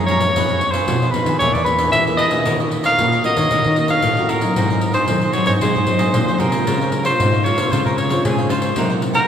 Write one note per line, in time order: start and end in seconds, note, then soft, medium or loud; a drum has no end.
0.00 0.27 F#2 medium
0.00 0.31 F3 medium
0.00 0.31 G#3 medium
0.00 0.31 C#4 medium
0.06 0.21 G#4 medium
0.06 0.73 C#5 medium
0.06 0.21 C#5 medium
0.06 pandeiro medium
0.10 0.21 F5 medium
0.10 0.20 A#5 medium
0.20 0.35 C#5 soft
0.20 0.34 F5 soft
0.20 pandeiro medium
0.35 0.80 F2 medium
0.35 0.85 F3 medium
0.35 0.69 B3 medium
0.35 0.69 D#4 medium
0.35 0.48 D#4 medium
0.35 0.70 G#4 medium
0.35 0.48 G#4 medium
0.35 0.49 B4 medium
0.35 0.49 F5 medium
0.35 pandeiro medium
0.49 0.61 G#4 soft
0.49 0.61 B4 soft
0.49 0.61 F5 soft
0.49 pandeiro soft
0.61 muted cavaquinho stroke soft
0.61 pandeiro medium
0.71 1.00 B4 medium
0.71 1.12 C5 medium
0.71 1.00 F5 medium
0.71 pandeiro medium
0.76 1.01 G#4 medium
0.88 1.10 B2 medium
0.88 1.39 F3 medium
0.88 1.04 B3 soft
0.88 1.04 D#4 medium
0.88 1.04 G#4 medium
0.88 pandeiro medium
1.02 1.13 G#4 soft
1.02 1.14 B4 soft
1.02 1.14 F5 soft
1.02 pandeiro soft
1.11 1.31 B3 medium
1.11 1.26 D#4 soft
1.11 1.31 D#4 medium
1.11 1.27 G#4 soft
1.11 1.31 G#4 medium
1.11 1.38 B4 medium
1.11 pandeiro medium
1.15 1.27 B4 soft
1.15 1.26 F5 soft
1.26 1.38 D#3 medium
1.26 1.40 G#4 medium
1.26 1.40 B4 medium
1.26 1.39 F5 medium
1.26 pandeiro medium
1.39 1.52 E2 medium
1.39 1.91 E3 soft
1.39 1.56 A#3 soft
1.39 1.53 D4 medium
1.39 1.57 D4 medium
1.39 1.53 G#4 medium
1.39 1.57 G#4 medium
1.39 1.54 B4 medium
1.39 1.54 C#5 medium
1.39 1.54 E5 medium
1.39 pandeiro medium
1.53 1.88 E2 medium
1.53 1.66 G#4 soft
1.53 1.66 B4 soft
1.53 1.64 D5 medium
1.53 1.67 E5 soft
1.53 pandeiro soft
1.64 1.91 A#3 medium
1.64 1.91 D4 medium
1.64 1.92 G#4 medium
1.64 1.90 B4 medium
1.64 muted cavaquinho stroke soft
1.64 pandeiro medium
1.79 2.06 G#4 medium
1.79 2.05 B4 medium
1.79 2.05 E5 medium
1.79 pandeiro medium
1.92 2.44 B2 medium
1.92 2.39 E3 medium
1.92 2.04 E5 medium
1.92 pandeiro medium
2.07 2.29 A#3 medium
2.07 2.29 D4 medium
2.07 2.29 G#4 medium
2.07 2.17 G#4 soft
2.07 2.18 B4 soft
2.07 2.19 E5 soft
2.07 pandeiro soft
2.17 2.31 D4 medium
2.17 2.31 G#4 medium
2.17 2.31 B4 medium
2.17 2.55 D#5 medium
2.17 2.30 E5 medium
2.17 pandeiro medium
2.31 2.81 A#3 medium
2.31 2.81 C#4 medium
2.31 2.81 F#4 medium
2.31 2.45 G#4 soft
2.31 2.44 B4 soft
2.31 2.44 E5 soft
2.31 pandeiro medium
2.45 2.96 D#3 medium
2.45 2.91 D#3 medium
2.45 2.58 F#4 medium
2.45 2.58 A#4 medium
2.45 2.59 C#5 medium
2.45 2.59 D#5 medium
2.45 pandeiro medium
2.60 2.70 A#4 soft
2.60 2.71 C#5 soft
2.60 2.71 D#5 soft
2.60 pandeiro soft
2.71 muted cavaquinho stroke soft
2.71 pandeiro medium
2.83 3.11 A#4 medium
2.83 3.10 C#5 medium
2.83 3.10 D#5 medium
2.83 3.22 F5 loud
2.83 pandeiro medium
2.99 3.49 A#2 medium
2.99 3.21 A#2 medium
2.99 3.14 A#3 medium
2.99 3.14 C#4 medium
2.99 3.15 F#4 medium
2.99 pandeiro medium
3.12 3.25 A#4 soft
3.12 3.25 C#5 soft
3.12 3.25 D#5 soft
3.12 pandeiro soft
3.24 3.59 A#3 medium
3.24 3.59 C#4 medium
3.24 3.37 F#4 soft
3.24 3.59 F#4 medium
3.24 3.37 A#4 soft
3.24 3.37 C#5 soft
3.24 3.87 D#5 loud
3.24 3.36 D#5 medium
3.24 pandeiro medium
3.37 3.49 D#3 medium
3.37 3.51 A#4 medium
3.37 3.50 C#5 medium
3.37 3.50 D#5 medium
3.37 pandeiro medium
3.51 3.63 D#3 medium
3.51 4.02 D#3 medium
3.51 3.64 F#4 medium
3.51 3.64 A#4 medium
3.51 3.64 C#5 medium
3.51 3.64 D#5 medium
3.51 pandeiro medium
3.64 3.99 D#3 medium
3.64 3.76 A#4 soft
3.64 3.77 C#5 soft
3.64 3.77 D#5 soft
3.64 pandeiro soft
3.76 4.13 A#3 medium
3.76 4.13 C#4 medium
3.76 4.13 F#4 medium
3.76 muted cavaquinho stroke soft
3.76 pandeiro medium
3.88 4.16 A#4 medium
3.88 4.16 C#5 medium
3.88 4.15 D#5 medium
3.88 4.31 F5 loud
3.88 pandeiro medium
4.02 4.49 A2 medium
4.02 pandeiro medium
4.17 4.40 A#3 medium
4.17 4.40 C#4 medium
4.17 4.40 F#4 medium
4.17 4.28 A#4 soft
4.17 4.29 C#5 soft
4.17 4.30 D#5 soft
4.17 pandeiro soft
4.29 4.42 F#4 medium
4.29 4.42 A#4 medium
4.29 4.93 A#4 medium
4.29 4.41 C#5 medium
4.29 4.40 D#5 medium
4.29 pandeiro medium
4.41 4.91 F#3 medium
4.41 4.91 C4 medium
4.41 4.91 D#4 medium
4.41 4.56 A#4 soft
4.41 4.55 C#5 soft
4.41 4.55 D#5 soft
4.41 pandeiro medium
4.56 5.01 G#2 medium
4.56 5.07 G#2 medium
4.56 4.69 F#4 medium
4.56 4.69 G#4 medium
4.56 4.69 C5 medium
4.56 4.69 D#5 medium
4.56 pandeiro medium
4.70 4.81 G#4 soft
4.70 4.81 C5 soft
4.70 4.81 D#5 soft
4.70 pandeiro soft
4.81 muted cavaquinho stroke soft
4.81 pandeiro medium
4.93 5.21 G#4 medium
4.93 5.35 C5 medium
4.93 5.21 C5 medium
4.93 5.20 D#5 medium
4.93 pandeiro medium
5.08 5.59 D#3 medium
5.08 5.32 D#3 medium
5.08 5.25 F#3 soft
5.08 5.25 C4 medium
5.08 5.25 D#4 medium
5.08 pandeiro medium
5.22 5.33 G#4 soft
5.22 5.34 C5 soft
5.22 5.35 D#5 soft
5.22 pandeiro soft
5.33 5.69 F#3 medium
5.33 5.70 C4 medium
5.33 5.70 D#4 medium
5.33 5.47 F#4 soft
5.33 5.47 G#4 soft
5.33 5.46 C5 soft
5.33 5.46 C#5 medium
5.33 5.46 D#5 soft
5.33 pandeiro medium
5.46 5.59 G#2 medium
5.46 5.61 G#4 medium
5.46 5.60 C5 medium
5.46 5.53 C#5 medium
5.46 5.60 D#5 medium
5.46 pandeiro medium
5.61 6.12 G#2 soft
5.61 5.73 G#3 medium
5.61 5.74 F#4 medium
5.61 5.74 G#4 medium
5.61 6.30 C5 medium
5.61 5.74 C5 medium
5.61 5.74 D#5 medium
5.61 pandeiro medium
5.75 5.87 G#2 medium
5.75 5.87 G#4 soft
5.75 5.87 C5 soft
5.75 5.87 D#5 soft
5.75 pandeiro soft
5.87 6.12 G#2 medium
5.87 6.13 F#3 medium
5.87 6.13 C4 soft
5.87 6.13 D#4 medium
5.87 muted cavaquinho stroke soft
5.87 pandeiro medium
5.99 6.26 G#4 medium
5.99 6.26 C5 medium
5.99 6.25 D#5 medium
5.99 pandeiro medium
6.14 6.38 A#2 medium
6.14 6.65 D#3 medium
6.14 pandeiro medium
6.28 6.51 F#3 medium
6.28 6.51 C4 medium
6.28 6.51 D#4 medium
6.28 6.38 G#4 soft
6.28 6.39 C5 soft
6.28 6.39 D#5 soft
6.28 pandeiro soft
6.33 6.41 C5 medium
6.38 6.64 C3 medium
6.38 6.52 F#4 medium
6.38 6.52 G#4 medium
6.38 7.05 A#4 medium
6.38 6.52 C5 medium
6.38 6.50 D#5 medium
6.38 pandeiro medium
6.51 7.02 G#3 medium
6.51 7.02 C4 medium
6.51 7.02 F4 medium
6.51 6.66 G#4 soft
6.51 6.66 C5 soft
6.51 6.65 D#5 soft
6.51 pandeiro medium
6.67 7.12 C#3 medium
6.67 7.18 C#3 medium
6.67 6.79 F4 medium
6.67 6.79 C5 medium
6.67 6.80 C#5 medium
6.67 6.79 F5 medium
6.67 pandeiro medium
6.81 6.90 C5 soft
6.81 6.90 C#5 soft
6.81 6.91 F5 soft
6.81 pandeiro soft
6.91 muted cavaquinho stroke soft
6.91 pandeiro medium
7.03 7.41 G#3 medium
7.03 7.42 C4 medium
7.03 7.42 F4 medium
7.03 7.31 C5 medium
7.03 7.46 C5 medium
7.03 7.31 C#5 medium
7.03 7.30 F5 medium
7.03 pandeiro medium
7.20 7.42 G#2 medium
7.20 7.70 G#2 medium
7.20 pandeiro medium
7.32 7.43 C5 soft
7.32 7.44 C#5 soft
7.32 7.44 F5 soft
7.32 pandeiro soft
7.43 7.61 G#3 soft
7.43 7.61 C4 medium
7.43 7.57 F4 soft
7.43 7.61 F4 medium
7.43 7.56 C5 soft
7.43 7.74 C#5 medium
7.43 7.55 C#5 medium
7.43 7.54 F5 medium
7.43 pandeiro medium
7.55 7.70 C#3 medium
7.55 7.70 C5 medium
7.55 7.70 C#5 medium
7.55 7.69 F5 medium
7.55 pandeiro medium
7.71 8.22 C#3 soft
7.71 7.84 C#3 medium
7.71 8.08 G#3 soft
7.71 8.08 C4 soft
7.71 7.84 F4 medium
7.71 8.08 F4 medium
7.71 7.84 C5 medium
7.71 7.85 C5 medium
7.71 7.84 C#5 medium
7.71 7.83 F5 medium
7.71 pandeiro medium
7.84 8.19 C#3 medium
7.84 7.99 A#4 medium
7.84 7.97 C5 soft
7.84 7.97 C#5 soft
7.84 7.97 F5 soft
7.84 pandeiro soft
7.98 8.24 C#5 medium
7.98 muted cavaquinho stroke soft
7.98 pandeiro medium
8.09 8.46 G#3 medium
8.09 8.46 C4 medium
8.09 8.46 F4 medium
8.09 8.37 C5 medium
8.09 8.36 C#5 medium
8.09 8.36 F5 medium
8.09 pandeiro medium
8.25 8.75 G#2 medium
8.25 8.70 C#3 medium
8.25 8.52 G#4 medium
8.25 pandeiro medium
8.38 8.49 C5 soft
8.38 8.49 C#5 soft
8.38 8.50 F5 soft
8.38 pandeiro soft
8.49 8.72 G#3 medium
8.49 8.72 C4 medium
8.49 8.62 F4 medium
8.49 8.73 F4 medium
8.49 8.63 C5 medium
8.49 8.89 C5 medium
8.49 8.62 C#5 medium
8.49 8.61 F5 medium
8.49 pandeiro medium
8.62 8.76 C5 soft
8.62 8.76 C#5 soft
8.62 8.75 F5 soft
8.62 pandeiro medium
8.76 9.27 C3 medium
8.76 9.22 C3 medium
8.76 9.26 F#3 medium
8.76 9.26 A#3 medium
8.76 8.90 D#4 medium
8.76 9.26 D#4 medium
8.76 8.90 A#4 medium
8.76 8.90 C5 medium
8.76 8.89 F#5 medium
8.76 pandeiro medium
8.89 9.01 A#4 soft
8.89 9.02 C5 soft
8.89 9.02 F#5 soft
8.89 pandeiro soft
9.02 muted cavaquinho stroke soft
9.02 pandeiro medium
9.14 9.28 A#4 medium
9.14 9.28 C5 medium
9.14 9.28 F#5 medium
9.14 pandeiro medium